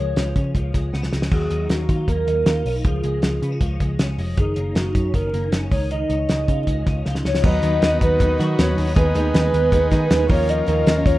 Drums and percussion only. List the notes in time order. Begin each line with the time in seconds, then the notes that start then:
0.16 snare, closed hi-hat
0.36 kick, closed hi-hat
0.55 kick, closed hi-hat
0.74 kick, snare, closed hi-hat
0.94 snare
1.03 snare
1.13 snare
1.22 snare
1.32 kick, crash
1.50 closed hi-hat
1.69 snare, closed hi-hat
1.89 kick, closed hi-hat
2.08 kick, closed hi-hat
2.28 closed hi-hat
2.46 snare, closed hi-hat
2.66 open hi-hat
2.85 kick, closed hi-hat
3.04 closed hi-hat
3.22 snare, closed hi-hat
3.43 closed hi-hat
3.61 kick, closed hi-hat
3.80 kick, closed hi-hat
3.99 snare, closed hi-hat
4.18 open hi-hat
4.37 kick, closed hi-hat
4.56 closed hi-hat
4.75 snare, closed hi-hat
4.95 kick, closed hi-hat
5.14 kick, closed hi-hat
5.34 closed hi-hat
5.52 snare, closed hi-hat
5.72 kick, open hi-hat
5.91 closed hi-hat
6.10 closed hi-hat
6.29 snare, closed hi-hat
6.48 kick, closed hi-hat
6.67 kick, closed hi-hat
6.86 kick, snare, closed hi-hat
7.06 snare
7.15 snare
7.25 snare
7.35 snare
7.44 kick, crash
7.63 closed hi-hat
7.82 snare, closed hi-hat
8.01 kick, closed hi-hat
8.20 kick, closed hi-hat
8.40 snare, closed hi-hat
8.59 snare, closed hi-hat
8.78 open hi-hat
8.96 kick, closed hi-hat
9.15 closed hi-hat
9.34 snare, closed hi-hat
9.54 closed hi-hat
9.72 kick, closed hi-hat
9.92 kick, snare, closed hi-hat
10.10 snare, closed hi-hat
10.30 kick, open hi-hat
10.49 closed hi-hat
10.68 closed hi-hat
10.87 snare, closed hi-hat
11.06 kick, closed hi-hat